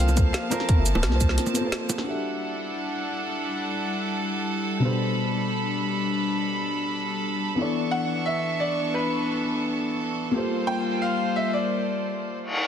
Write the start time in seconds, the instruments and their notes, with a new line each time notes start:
Already playing: sub bass C2, string section F3 A#3 C4 A5, felt piano A#3 F4 A4 C5
0.00 grand piano F5
0.08 high bongo, shaker
0.16 felt piano A#3 F4 A4 C5, kick, closed hi-hat, shaker
0.33 grand piano F5, snare, closed hi-hat
0.50 felt piano A#3 F4 A4 C5, grand piano A#4, closed hi-hat, high bongo, shaker
0.60 snare
0.69 kick, closed hi-hat
0.76 sub bass G1, felt piano A#3 F4 A4 E5
0.86 closed hi-hat, shaker
0.95 sub bass D1, high bongo
1.03 sub bass C2, snare, closed hi-hat
1.09 felt piano A#3 F4, snare
1.13 felt piano C5 A5
1.21 kick, closed hi-hat, shaker
1.29 snare
1.38 snare, closed hi-hat
1.46 high bongo, shaker
1.53 felt piano A#3 F4 A4 C5, closed hi-hat, shaker
1.61 felt piano A#3 F4
1.65 felt piano A4 C5
1.72 snare, closed hi-hat
1.89 closed hi-hat, high bongo, shaker
1.98 snare
2.03 string section G3 D4 E4 A4 F#5, felt piano D4 F#4 G4
2.08 felt piano A4 E5
4.79 felt piano B2 D4 G4, string section D4 B5
4.84 felt piano A4 C5
7.55 string section E3 B3 D4 A4 C#6, felt piano B3 D4 E4
7.60 felt piano A4 D5
7.91 grand piano F#5
8.26 grand piano E5
8.60 grand piano D5
8.94 grand piano B4
10.31 string section G3 A#3 F4 C5, felt piano A#3 F4 G4
10.36 felt piano A4 C5
10.67 grand piano G5
11.02 grand piano F5
11.36 grand piano E5
11.53 grand piano D5
12.41 reverse cymbal